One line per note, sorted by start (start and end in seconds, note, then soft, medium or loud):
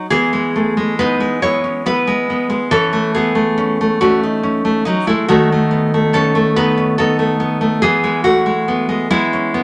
0.10 2.68 E3 medium
0.10 0.96 B3 medium
0.10 0.96 G#4 medium
0.33 0.76 G#3 soft
0.56 1.00 A3 soft
0.77 1.19 G#3 soft
0.99 1.41 B3 soft
0.99 1.41 D#4 medium
0.99 1.41 B4 medium
1.20 2.06 G#3 soft
1.42 1.85 B3 soft
1.42 1.64 E4 medium
1.42 1.84 C#5 medium
1.64 1.87 C#4 soft
1.86 2.29 B3 soft
1.86 2.68 E4 soft
1.86 2.68 B4 medium
2.07 2.48 G#3 soft
2.30 2.72 B3 soft
2.50 2.71 G#3 soft
2.71 5.25 E3 medium
2.71 3.11 C#4 medium
2.71 3.12 A4 medium
2.93 3.34 A3 soft
3.15 3.97 B3 soft
3.15 3.97 G#4 medium
3.35 3.80 A3 soft
3.58 3.99 C#4 soft
3.81 4.01 A3 soft
4.01 4.64 A3 medium
4.01 4.42 C#4 soft
4.01 4.23 F#4 medium
4.23 4.84 D#4 soft
4.43 4.85 C#4 soft
4.65 4.86 A3 soft
4.85 5.06 F#3 soft
4.85 5.06 C#4 soft
4.85 5.07 D#4 medium
5.07 5.28 G#3 soft
5.07 5.28 A3 soft
5.07 5.28 E4 medium
5.29 7.78 D#3 medium
5.29 5.51 A3 medium
5.29 6.11 F#4 medium
5.52 5.93 A3 soft
5.71 6.12 B3 soft
5.94 6.34 A3 soft
6.13 6.55 B3 soft
6.13 6.53 C#4 medium
6.13 6.54 A4 medium
6.35 7.18 A3 soft
6.56 6.98 B3 soft
6.56 6.77 D#4 medium
6.56 6.96 B4 medium
6.77 6.99 C#4 soft
6.98 7.39 B3 soft
6.98 7.79 D#4 medium
6.98 7.79 A4 medium
7.19 7.60 A3 soft
7.40 7.82 B3 soft
7.61 7.82 A3 soft
7.82 9.63 E3 medium
7.82 8.22 B3 medium
7.82 8.23 G#4 medium
8.04 8.45 G#3 soft
8.24 9.07 A3 medium
8.24 9.07 F#4 medium
8.46 8.88 G#3 soft
8.68 9.09 B3 soft
8.89 9.10 G#3 soft
9.11 9.63 G#3 medium
9.11 9.53 B3 medium
9.11 9.63 E4 medium
9.33 9.63 C#4 soft
9.54 9.63 B3 soft